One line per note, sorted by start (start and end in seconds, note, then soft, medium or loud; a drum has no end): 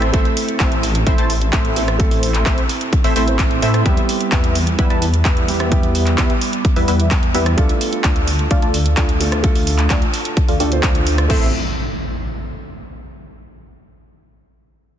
0.00 0.11 A1 loud
0.00 0.11 A3 loud
0.00 0.12 A3 medium
0.00 0.11 C4 medium
0.00 0.13 C4 medium
0.00 0.11 E4 medium
0.00 0.14 E4 medium
0.00 0.15 A4 loud
0.00 0.11 C5 medium
0.00 0.11 E5 loud
0.00 cross-stick medium
0.00 closed hi-hat soft
0.12 0.26 A1 medium
0.12 1.73 A3 medium
0.12 0.28 A3 medium
0.12 1.73 C4 medium
0.12 0.28 C4 medium
0.12 0.28 E4 medium
0.12 1.74 E4 medium
0.12 1.74 A4 loud
0.12 0.28 C5 medium
0.12 0.28 E5 medium
0.12 kick loud
0.12 closed hi-hat medium
0.25 closed hi-hat soft
0.37 open hi-hat loud
0.48 closed hi-hat soft
0.60 1.04 A1 loud
0.60 0.84 A3 medium
0.60 0.84 C4 medium
0.60 0.84 E4 medium
0.60 0.84 C5 medium
0.60 0.84 E5 medium
0.60 kick loud
0.60 cross-stick medium
0.60 clap loud
0.60 closed hi-hat medium
0.72 closed hi-hat soft
0.83 open hi-hat loud
0.95 closed hi-hat soft
1.07 1.16 A1 medium
1.07 1.17 A3 loud
1.07 1.17 C4 medium
1.07 1.17 E4 medium
1.07 1.17 C5 medium
1.07 1.17 E5 loud
1.07 kick loud
1.07 closed hi-hat medium
1.18 1.51 A1 medium
1.18 1.33 A3 medium
1.18 1.33 C4 medium
1.18 1.33 E4 medium
1.18 1.33 C5 medium
1.18 1.33 A5 medium
1.18 closed hi-hat soft
1.30 open hi-hat loud
1.41 closed hi-hat soft
1.53 2.44 A1 medium
1.53 2.43 A3 medium
1.53 2.43 C4 medium
1.53 2.43 E4 medium
1.53 2.43 C5 medium
1.53 2.43 E5 medium
1.53 kick loud
1.53 clap loud
1.53 closed hi-hat medium
1.65 closed hi-hat soft
1.76 1.97 A3 medium
1.76 1.97 C4 medium
1.76 1.97 E4 medium
1.76 1.97 A4 medium
1.76 open hi-hat loud
1.88 cross-stick medium
1.88 closed hi-hat soft
1.98 3.13 A3 medium
1.98 3.13 C4 medium
1.98 3.14 E4 medium
1.98 3.14 A4 loud
1.98 kick loud
1.98 closed hi-hat medium
2.11 open hi-hat medium
2.23 open hi-hat loud
2.34 clap soft
2.34 closed hi-hat soft
2.46 2.59 A1 loud
2.46 2.61 A3 loud
2.46 2.61 C4 medium
2.46 2.61 E4 medium
2.46 2.61 C5 medium
2.46 2.61 E5 loud
2.46 kick loud
2.46 cross-stick medium
2.46 clap loud
2.46 closed hi-hat medium
2.58 closed hi-hat soft
2.69 open hi-hat loud
2.81 closed hi-hat soft
2.93 kick loud
2.93 closed hi-hat medium
3.04 3.14 A1 loud
3.04 3.14 A3 loud
3.04 3.14 C4 medium
3.04 3.14 E4 medium
3.04 3.14 C5 medium
3.04 3.14 E5 loud
3.04 open hi-hat medium
3.15 3.60 A1 loud
3.15 3.24 A3 medium
3.15 3.40 A3 medium
3.15 3.25 C4 medium
3.15 3.40 C4 medium
3.15 3.40 E4 medium
3.15 3.25 E4 medium
3.15 3.25 A4 medium
3.15 3.40 C5 medium
3.15 3.40 E5 medium
3.15 open hi-hat loud
3.26 3.82 A3 medium
3.26 3.83 C4 medium
3.26 3.83 E4 medium
3.26 3.83 C5 medium
3.26 closed hi-hat soft
3.39 kick loud
3.39 clap loud
3.39 closed hi-hat medium
3.51 closed hi-hat soft
3.62 3.83 A2 loud
3.62 3.83 A3 loud
3.62 3.83 C4 medium
3.62 3.83 E4 medium
3.62 3.83 C5 medium
3.62 3.83 E5 loud
3.62 open hi-hat loud
3.74 cross-stick medium
3.74 closed hi-hat soft
3.84 3.98 E2 medium
3.84 5.45 G3 medium
3.84 4.01 G3 medium
3.84 5.46 B3 medium
3.84 4.01 B3 medium
3.84 4.01 E4 medium
3.84 5.46 E4 medium
3.84 5.46 G4 loud
3.84 4.01 B4 medium
3.84 4.01 E5 medium
3.84 kick loud
3.84 closed hi-hat medium
3.97 closed hi-hat soft
4.09 open hi-hat loud
4.21 closed hi-hat soft
4.32 4.76 E2 loud
4.32 4.56 G3 medium
4.32 4.56 B3 medium
4.32 4.56 E4 medium
4.32 4.56 B4 medium
4.32 4.56 E5 medium
4.32 kick loud
4.32 cross-stick medium
4.32 clap loud
4.32 closed hi-hat medium
4.44 closed hi-hat soft
4.55 open hi-hat loud
4.67 closed hi-hat soft
4.79 4.88 E2 medium
4.79 4.89 G3 loud
4.79 4.89 B3 medium
4.79 4.89 E4 medium
4.79 4.89 B4 medium
4.79 4.89 E5 loud
4.79 kick loud
4.79 closed hi-hat medium
4.90 5.23 E2 loud
4.90 5.05 G3 medium
4.90 5.05 B3 medium
4.90 5.05 E4 medium
4.90 5.05 B4 medium
4.90 5.05 A5 medium
4.90 closed hi-hat soft
5.02 open hi-hat loud
5.14 closed hi-hat soft
5.25 6.16 E2 medium
5.25 6.15 G3 medium
5.25 6.15 B3 medium
5.25 6.15 E4 medium
5.25 6.15 B4 medium
5.25 6.15 E5 medium
5.25 kick loud
5.25 clap loud
5.25 closed hi-hat medium
5.37 closed hi-hat soft
5.48 5.69 G3 medium
5.48 5.69 B3 medium
5.48 5.69 E4 medium
5.48 5.69 G4 medium
5.48 open hi-hat loud
5.60 cross-stick medium
5.60 closed hi-hat soft
5.71 7.31 G3 medium
5.71 7.32 B3 medium
5.71 7.32 E4 medium
5.71 7.32 G4 loud
5.71 kick loud
5.71 closed hi-hat medium
5.83 closed hi-hat soft
5.95 open hi-hat loud
6.06 clap soft
6.06 closed hi-hat soft
6.18 6.31 E2 loud
6.18 6.33 G3 loud
6.18 6.33 B3 medium
6.18 6.33 E4 medium
6.18 6.33 B4 medium
6.18 6.33 E5 loud
6.18 kick loud
6.18 cross-stick medium
6.18 clap loud
6.18 closed hi-hat medium
6.30 closed hi-hat soft
6.41 open hi-hat loud
6.53 closed hi-hat soft
6.65 kick loud
6.65 closed hi-hat medium
6.76 6.86 E2 loud
6.76 6.86 G3 loud
6.76 6.86 B3 medium
6.76 6.86 E4 medium
6.76 6.86 B4 medium
6.76 6.86 E5 loud
6.76 open hi-hat medium
6.88 7.32 E2 loud
6.88 7.12 G3 medium
6.88 7.12 B3 medium
6.88 7.12 E4 medium
6.88 7.12 B4 medium
6.88 7.12 E5 medium
6.88 open hi-hat loud
7.00 closed hi-hat soft
7.11 kick loud
7.11 clap loud
7.11 closed hi-hat medium
7.23 closed hi-hat soft
7.34 7.55 E2 medium
7.34 7.55 G3 medium
7.34 7.55 B3 medium
7.34 7.55 E4 medium
7.34 7.55 G4 medium
7.34 7.55 B4 medium
7.34 7.55 E5 loud
7.34 open hi-hat loud
7.46 cross-stick medium
7.46 closed hi-hat soft
7.57 7.70 D2 medium
7.57 9.17 A3 medium
7.57 7.73 A3 medium
7.57 9.18 D4 medium
7.57 7.73 D4 medium
7.57 7.73 F4 medium
7.57 9.18 F4 medium
7.57 9.18 A4 loud
7.57 7.73 D5 medium
7.57 7.73 F5 medium
7.57 kick loud
7.57 closed hi-hat medium
7.69 closed hi-hat soft
7.81 open hi-hat loud
7.93 closed hi-hat soft
8.04 8.48 D2 loud
8.04 8.28 A3 medium
8.04 8.28 D4 medium
8.04 8.28 F4 medium
8.04 8.28 D5 medium
8.04 8.28 F5 medium
8.04 kick loud
8.04 cross-stick medium
8.04 clap loud
8.04 closed hi-hat medium
8.16 closed hi-hat soft
8.28 open hi-hat loud
8.39 closed hi-hat soft
8.51 8.60 D2 loud
8.51 8.61 A3 loud
8.51 8.61 D4 medium
8.51 8.61 F4 medium
8.51 8.61 D5 medium
8.51 8.61 F5 loud
8.51 kick loud
8.51 closed hi-hat medium
8.62 8.95 D2 loud
8.62 8.77 A3 medium
8.62 8.77 D4 medium
8.62 8.77 F4 medium
8.62 8.77 D5 medium
8.62 8.77 A5 medium
8.62 closed hi-hat soft
8.74 open hi-hat loud
8.86 closed hi-hat soft
8.97 9.88 D2 medium
8.97 9.88 A3 medium
8.97 9.88 D4 medium
8.97 9.88 F4 medium
8.97 9.88 D5 medium
8.97 9.88 F5 medium
8.97 kick loud
8.97 clap loud
8.97 closed hi-hat medium
9.09 closed hi-hat soft
9.20 9.41 A3 medium
9.20 9.41 D4 medium
9.20 9.41 F4 medium
9.20 9.41 A4 medium
9.20 open hi-hat loud
9.32 cross-stick medium
9.32 closed hi-hat soft
9.43 10.57 A3 medium
9.43 10.58 D4 medium
9.43 10.58 F4 medium
9.43 10.58 A4 loud
9.43 kick loud
9.43 closed hi-hat loud
9.55 open hi-hat medium
9.67 open hi-hat loud
9.79 clap soft
9.79 closed hi-hat soft
9.90 10.03 D2 loud
9.90 10.05 A3 loud
9.90 10.05 D4 medium
9.90 10.05 F4 medium
9.90 10.05 D5 medium
9.90 10.05 F5 loud
9.90 kick loud
9.90 cross-stick medium
9.90 clap loud
9.90 closed hi-hat loud
10.02 closed hi-hat soft
10.14 open hi-hat loud
10.25 closed hi-hat soft
10.37 kick loud
10.37 closed hi-hat loud
10.48 10.58 D2 loud
10.48 10.58 A3 loud
10.48 10.58 D4 medium
10.48 10.58 F4 medium
10.48 10.58 D5 medium
10.48 10.58 F5 loud
10.48 open hi-hat medium
10.60 10.81 D2 loud
10.60 10.69 A3 medium
10.60 10.80 A3 medium
10.60 10.69 D4 medium
10.60 10.80 D4 medium
10.60 10.80 F4 medium
10.60 10.69 F4 medium
10.60 10.69 A4 medium
10.60 10.80 D5 medium
10.60 10.80 G5 loud
10.60 open hi-hat loud
10.71 11.27 A3 medium
10.71 11.27 D4 medium
10.71 11.27 F4 medium
10.71 11.28 C5 medium
10.71 closed hi-hat soft
10.83 11.28 D2 loud
10.83 11.27 A3 medium
10.83 11.27 D4 medium
10.83 11.27 F4 medium
10.83 11.27 D5 medium
10.83 11.27 F5 loud
10.83 kick loud
10.83 clap loud
10.83 closed hi-hat medium
10.95 closed hi-hat soft
11.07 open hi-hat loud
11.18 cross-stick medium
11.18 closed hi-hat soft
11.28 11.52 A1 loud
11.28 11.46 A3 medium
11.28 11.47 A3 medium
11.28 11.47 C4 medium
11.28 11.47 E4 medium
11.28 11.48 E4 medium
11.28 11.48 A4 medium
11.28 11.47 C5 medium
11.28 11.47 E5 loud
11.28 kick loud
11.28 crash medium
11.28 impact medium